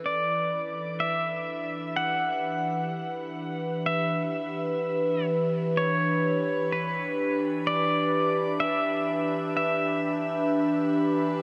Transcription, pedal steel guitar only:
X:1
M:4/4
L:1/16
Q:1/4=63
K:Em
V:1 name="Pedal steel guitar"
d4 e4 f8 | e6 z2 ^c4 B3 z | d4 e4 e8 |]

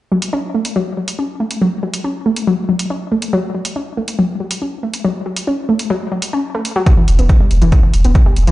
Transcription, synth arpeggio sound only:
X:1
M:4/4
L:1/16
Q:1/4=140
K:F#phr
V:1 name="Synth arpeggio sound" clef=bass
z F, z C z A, z F, z F, z C z A, z F, | z F, z C z A, z F, z F, z C z A, z F, | z F, z C z A, z F, z F, z C z A, z F, | z F, z C z A, z F, z F, z C z A, z F, |
z E, z B, z G, z E, z E, z B, z G, z E, |]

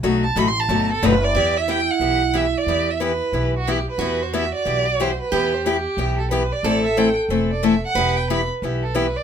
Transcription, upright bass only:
X:1
M:4/4
L:1/8
Q:"Swing" 1/4=182
K:Em
V:1 name="Upright bass" clef=bass
B,,,2 A,,,2 G,,,2 F,,,2 | E,,4 B,,,4 | E,,4 B,,,4 | E,,4 B,,,4 |
E,,4 B,,,4 | A,,,4 E,,,4 | E,,,4 B,,,4 |]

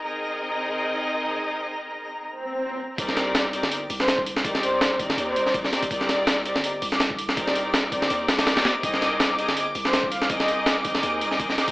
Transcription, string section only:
X:1
M:4/4
L:1/16
Q:"Swing 16ths" 1/4=164
K:Cm
V:1 name="String section"
[CEABe]16- | [CEABe]8 z8 | [CEGBd]6 [CEGBd]2 [CEGBd] z6 z | [CEGBd]6 [CEGBd]8 [CEGBd]2 |
[CEGBd]6 [CEGBd]2 [CEGBd] z6 z | [CEGBd]6 [CEGBd]4- [CEGBd] [CEGBd]4- [CEGBd] | [CEABe]6 [CEABe]2 [CEABe] z6 z | [CEABe]6 [CEABe]8 [CEABe]2 |]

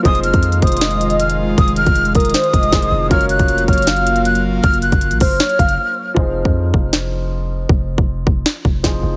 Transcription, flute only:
X:1
M:4/4
L:1/8
Q:1/4=157
K:Fphr
V:1 name="Flute"
e' f'2 e'3 f' z | e' f'2 e'4- e' | f' g'2 f'3 g' z | f' g'2 f'4- f' |
z8 | z8 |]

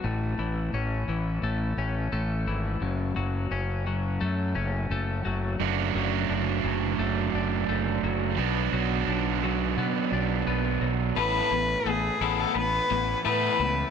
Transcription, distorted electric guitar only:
X:1
M:4/4
L:1/8
Q:1/4=86
K:A
V:1 name="Distorted electric guitar"
z8 | z8 | [F,A,DF]8 | [B,,F,B,DF]8 |
z8 |]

